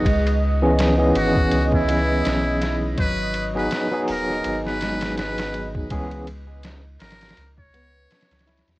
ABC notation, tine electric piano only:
X:1
M:4/4
L:1/16
Q:"Swing 16ths" 1/4=82
K:C#dor
V:1 name="Tine electric piano"
z3 [E,B,CG]2 [E,B,CG]8- [E,B,CG]3 | z3 [F,B,DG]2 [F,B,DG]8- [F,B,DG]3 | [E,B,CG]2 z12 z2 |]